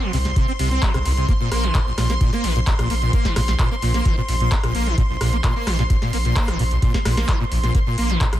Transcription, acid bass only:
0.02 0.11 F3 loud
0.13 0.17 C3 loud
0.25 0.31 C2 medium
0.36 0.46 C3 medium
0.48 0.52 C4 medium
0.59 0.69 C3 medium
0.71 0.84 C4 medium
0.82 0.92 F3 loud
0.94 0.98 C3 loud
1.06 1.12 C2 medium
1.17 1.27 C3 medium
1.29 1.32 A#3 medium
1.41 1.50 A#2 medium
1.52 1.65 A#3 medium
1.64 1.73 D#3 loud
1.75 1.79 A#2 loud
1.87 1.93 A#1 medium
1.98 2.08 A#2 medium
2.10 2.13 A#3 medium
2.21 2.31 A#2 medium
2.33 2.46 A#3 medium
2.44 2.54 D#3 loud
2.56 2.60 A#2 loud
2.67 2.74 A#1 medium
2.79 2.88 A#2 medium
2.90 2.94 A#3 medium
3.02 3.11 A#2 medium
3.13 3.27 A#3 medium
3.25 3.34 D#3 loud
3.36 3.40 A#2 loud
3.48 3.54 A#1 medium
3.59 3.69 A#2 medium
3.71 3.75 A#3 medium
3.82 3.92 A#2 medium
3.94 4.07 A#3 medium
4.05 4.15 D#3 loud
4.17 4.21 A#2 loud
4.29 4.35 A#1 medium
4.40 4.50 A#2 medium
4.52 4.56 A#3 medium
4.64 4.73 A#2 medium
4.75 4.88 A#3 medium
4.87 4.96 D#3 loud
4.98 5.02 A#2 loud
5.10 5.16 A#1 medium
5.21 5.31 A#2 medium
5.33 5.36 A#3 medium
5.44 5.54 A#2 medium
5.56 5.69 A#3 medium
5.67 5.77 D#3 loud
5.79 5.83 A#2 loud
5.90 5.97 A#1 medium
6.02 6.11 A#2 medium
6.13 6.17 A#3 medium
6.25 6.34 A#2 medium
6.36 6.50 A#3 medium
6.48 6.57 D#3 loud
6.59 6.63 A#2 loud
6.71 6.77 A#1 medium
6.82 6.92 A#2 medium
6.94 6.98 A#3 medium
7.05 7.15 A#2 medium
7.17 7.30 A#3 medium
7.28 7.38 D#3 loud
7.40 7.44 A#2 loud
7.51 7.58 A#1 medium
7.64 7.73 A#2 medium
7.75 7.79 A#3 medium
7.87 7.96 A#2 medium
7.98 8.11 A#3 medium
8.10 8.19 D#3 loud
8.21 8.25 A#2 loud
8.33 8.39 A#1 medium

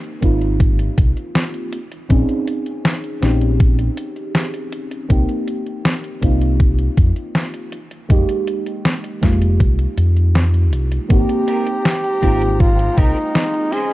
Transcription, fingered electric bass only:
0.22 0.87 G#1 medium
0.98 1.10 C2 medium
2.10 2.23 A#1 medium
3.23 3.87 A#1 medium
5.10 5.22 C2 medium
6.23 6.87 C2 loud
6.98 7.10 F2 medium
8.10 8.22 F1 loud
9.23 9.59 F1 medium
9.60 9.85 C2 medium
9.97 10.72 F2 medium
10.72 10.97 C2 medium
11.10 11.23 G#1 medium
12.23 12.87 G#1 loud
12.98 13.10 C2 medium

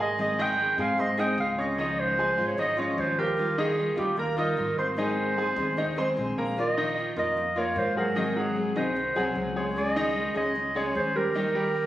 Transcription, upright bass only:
0.00 0.73 G#1 medium
0.78 1.34 G#2 medium
1.38 2.32 C#2 medium
2.38 2.94 G#1 medium
2.98 3.92 D#2 medium
3.97 4.54 D#2 medium
4.57 5.51 G#1 medium
5.56 6.13 D#2 medium
6.17 7.11 A#1 medium
7.16 7.72 F2 medium
7.76 8.70 G#2 medium
8.76 9.13 C2 medium
9.16 9.35 C2 medium
9.35 10.29 C#2 medium
10.36 10.91 C#2 medium
10.95 11.86 D#2 medium

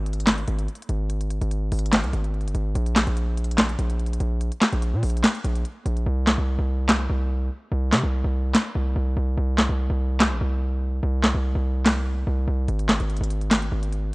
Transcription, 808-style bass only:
0.00 0.45 G#1 loud
0.48 0.68 G#1 loud
0.89 1.39 G#1 loud
1.41 1.71 G#1 loud
1.72 2.05 G#1 loud
2.03 2.13 C2 loud
2.13 2.46 G#1 loud
2.45 2.54 G1 loud
2.55 2.74 G#1 loud
2.75 3.06 A#1 loud
3.07 3.76 A#1 loud
3.79 4.18 A#1 loud
4.20 4.51 A#1 loud
4.73 4.95 A#1 loud
4.93 5.02 A#2 loud
5.03 5.23 A#1 loud
5.44 5.64 A#1 loud
5.86 6.06 A#1 loud
6.06 6.37 C2 loud
6.38 6.58 C2 loud
6.59 7.08 C2 loud
7.10 7.50 C2 loud
7.72 7.94 C2 loud
7.92 8.03 C3 medium
8.03 8.23 C2 loud
8.24 8.53 C2 loud
8.75 8.95 C2 loud
8.96 9.16 C2 loud
9.17 9.37 C2 loud
9.37 9.68 C2 loud
9.69 9.89 C2 loud
9.90 10.33 C2 loud
10.31 10.40 A#1 loud
10.41 11.00 C2 loud
11.03 11.33 C2 loud
11.34 11.54 C2 loud
11.55 12.24 C2 loud
12.27 12.47 C2 loud
12.48 12.68 C2 loud
12.68 12.99 G#1 loud
13.00 13.20 G#1 loud
13.21 13.70 G#1 loud
13.72 14.12 G#1 loud

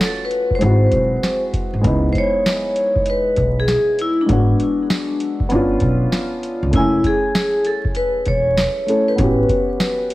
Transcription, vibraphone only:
0.05 0.21 A4 medium
0.25 0.54 B4 medium
0.55 1.41 C5 medium
2.13 2.16 C5 medium
2.18 3.11 C#5 loud
3.10 3.60 B4 medium
3.60 3.97 G#4 medium
4.01 4.20 E4 medium
4.21 5.38 D4 medium
6.76 7.06 E4 medium
7.07 7.69 G#4 medium
7.67 7.80 A4 medium
7.97 8.28 B4 loud
8.28 9.11 C#5 loud
9.08 10.14 B4 medium

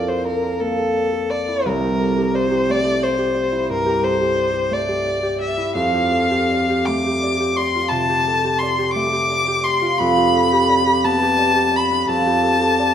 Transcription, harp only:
0.00 1.39 A#1 soft
0.00 1.67 F2 soft
0.00 0.60 A#3 soft
0.00 1.47 E4 soft
0.00 0.21 A#4 soft
0.00 0.24 D5 soft
0.09 0.42 A4 soft
0.25 0.95 D5 soft
0.43 0.78 A4 soft
0.61 4.51 A#3 soft
0.79 1.12 A4 soft
0.96 1.31 D5 soft
1.13 1.99 A4 soft
1.32 2.33 D5 soft
1.48 3.51 E4 soft
1.65 5.55 C2 medium
1.84 2.16 G4 soft
2.00 2.30 A4 soft
2.18 2.50 G4 soft
2.34 3.01 D5 soft
2.51 2.83 G4 soft
2.69 4.69 A3 soft
2.84 3.17 G4 soft
3.02 3.33 D5 soft
3.18 3.85 G4 soft
3.35 4.35 D5 soft
3.52 5.56 E4 soft
3.70 5.77 G2 soft
3.86 4.19 G4 soft
4.02 4.32 A4 soft
4.21 4.52 G4 soft
4.36 5.05 D5 soft
4.54 4.87 G4 soft
4.71 6.86 A3 soft
4.88 5.22 G4 soft
5.06 5.38 D5 soft
5.23 5.93 G4 soft
5.39 6.50 D5 soft
5.57 5.78 E4 soft
5.75 9.65 F2 medium
5.94 6.29 G4 soft
6.11 6.44 A4 soft
6.31 6.69 G4 soft
6.51 7.22 D5 soft
6.70 7.05 G4 soft
6.87 8.94 A3 soft
7.06 7.39 G4 soft
7.23 7.57 D5 soft
7.40 8.08 G4 soft
7.58 8.61 D5 soft
7.75 9.80 F4 soft
7.91 10.01 C3 soft
8.09 8.43 G4 medium
8.27 8.56 A4 soft
8.44 8.77 G4 soft
8.63 9.29 D5 soft
8.78 9.11 G4 soft
8.95 12.85 A3 soft
9.12 9.47 G4 soft
9.30 9.63 D5 soft
9.48 10.15 G4 soft
9.64 10.68 D5 soft
9.82 10.02 F4 soft
10.00 12.07 F2 medium
10.16 10.51 G4 soft
10.35 10.64 A4 soft
10.52 10.85 G4 soft
10.69 11.37 D5 medium
10.87 11.21 G4 soft
11.04 12.94 B3 soft
11.22 11.55 G4 soft
11.39 11.73 D5 soft
11.56 12.25 G4 soft
11.74 12.78 D5 soft
11.91 12.94 D4 soft
12.08 12.94 F2 medium
12.26 12.60 G4 soft
12.44 12.73 A4 soft
12.61 12.94 G4 soft
12.80 12.94 D5 soft

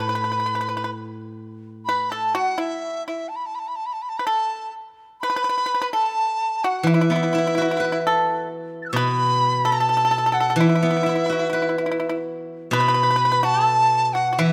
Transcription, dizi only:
0.00 0.93 B5 medium
1.85 2.11 B5 medium
2.10 2.35 A5 medium
2.34 2.60 F#5 medium
2.59 3.06 E5 medium
3.07 3.30 E5 medium
3.28 3.37 A5 medium
3.35 3.47 B5 medium
3.46 3.56 A5 medium
3.54 3.60 B5 medium
3.59 3.69 A5 medium
3.67 3.77 B5 medium
3.75 3.87 A5 medium
3.85 3.94 B5 medium
3.92 4.03 A5 medium
4.01 4.10 B5 medium
4.09 4.19 A5 medium
4.18 4.27 B5 medium
4.25 4.73 A5 medium
5.20 5.89 B5 loud
5.93 6.65 A5 medium
6.63 6.78 F#5 medium
6.78 6.89 F#5 medium
6.88 8.49 E5 medium
8.82 8.87 F#6 medium
8.82 8.85 A6 soft
8.88 8.92 E6 medium
8.93 9.66 B5 loud
8.93 8.96 C#6 medium
9.64 10.35 A5 loud
10.33 10.56 F#5 medium
10.57 12.20 E5 medium
12.74 13.46 B5 loud
13.44 14.14 A5 loud
14.13 14.40 F#5 medium
14.39 14.53 E5 medium

